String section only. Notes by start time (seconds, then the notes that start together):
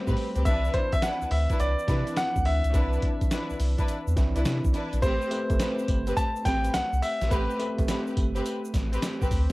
0.07 C4 G4 B4
0.36 C4 G4 B4
0.45 D4 E4 B4
1.02 D4 E4 B4
1.50 D4 E4 B4
1.88 D4 E4 B4
2.74 D4 E4 B4
3.31 D4 E4 B4
3.78 D4 E4 B4
4.36 D4 E4 B4
4.74 D4 E4 B4
5.02 C4 G4 B4
5.59 C4 G4 B4
6.07 C4 G4 B4
6.45 C4 G4 B4
7.31 C4 G4 B4
7.88 C4 G4 B4
8.36 C4 G4 B4
8.93 C4 G4 B4
9.21 C4 G4 B4